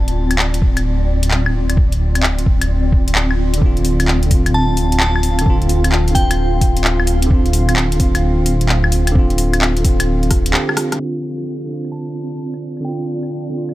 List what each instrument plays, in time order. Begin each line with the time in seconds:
Already playing: detuned saw bass D1, ambient pad C4 F4 D5
0.08 closed hi-hat
0.31 closed hi-hat, claves
0.39 clap
0.54 closed hi-hat
0.62 kick
0.77 closed hi-hat, claves
1.23 closed hi-hat
1.31 clap
1.46 claves
1.70 closed hi-hat, claves
1.77 kick
1.92 closed hi-hat
2.15 closed hi-hat, claves
2.23 clap
2.39 closed hi-hat
2.46 kick
2.62 closed hi-hat, claves
2.92 kick
3.08 closed hi-hat
3.15 clap
3.31 claves
3.54 closed hi-hat
3.58 tine electric piano D3, ambient pad F5, kick
3.62 detuned saw bass D1, tine electric piano C4
3.66 tine electric piano F4
3.77 closed hi-hat
3.85 open hi-hat
4.00 closed hi-hat, claves
4.08 clap
4.23 tine electric piano D3, closed hi-hat
4.30 tine electric piano C4, kick, open hi-hat
4.35 tine electric piano F4
4.46 closed hi-hat, claves
4.54 synth bell A5
4.77 open hi-hat
4.92 closed hi-hat
5.00 synth bell A5, clap
5.16 claves
5.23 open hi-hat
5.39 tine electric piano D3, closed hi-hat, claves
5.46 tine electric piano C4 F4, kick
5.62 closed hi-hat
5.69 open hi-hat
5.84 closed hi-hat, claves
5.92 clap
6.08 tine electric piano D3, closed hi-hat
6.15 tine electric piano C4, synth bell G5, kick, open hi-hat
6.19 tine electric piano F4
6.31 closed hi-hat, claves
6.61 kick, open hi-hat
6.77 closed hi-hat
6.84 clap
7.00 claves
7.07 open hi-hat
7.22 closed hi-hat
7.26 tine electric piano D3 C4
7.30 tine electric piano F4, kick
7.46 closed hi-hat
7.53 open hi-hat
7.69 closed hi-hat, claves
7.76 clap
7.92 tine electric piano D3, closed hi-hat
8.00 tine electric piano C4 F4, kick, open hi-hat
8.15 closed hi-hat, claves
8.46 open hi-hat
8.61 closed hi-hat
8.69 clap
8.84 claves
8.92 open hi-hat
9.07 closed hi-hat, claves
9.11 tine electric piano D3 C4
9.15 tine electric piano F4, kick
9.30 closed hi-hat
9.38 open hi-hat
9.53 closed hi-hat, claves
9.62 clap
9.77 closed hi-hat
9.81 tine electric piano D3, kick, open hi-hat
9.85 tine electric piano C4
9.89 tine electric piano F4
10.00 closed hi-hat, claves
10.23 closed hi-hat
10.31 kick, cross-stick, open hi-hat
10.46 closed hi-hat
10.52 tine electric piano D3 C4 G4, cross-stick, clap
10.69 cross-stick, claves
10.77 cross-stick, open hi-hat
10.92 tine electric piano D3, cross-stick, closed hi-hat
10.99 ambient pad C4 F4 D5, tine electric piano C4
11.04 tine electric piano F4
11.38 claves
11.65 tine electric piano D3 C4
11.73 tine electric piano F4
11.85 claves
11.92 synth bell A5
12.54 claves
12.77 tine electric piano D3, claves
12.85 tine electric piano C4, synth bell G5
12.89 tine electric piano F4
13.23 claves
13.50 tine electric piano D3 C4
13.58 tine electric piano F4
13.69 claves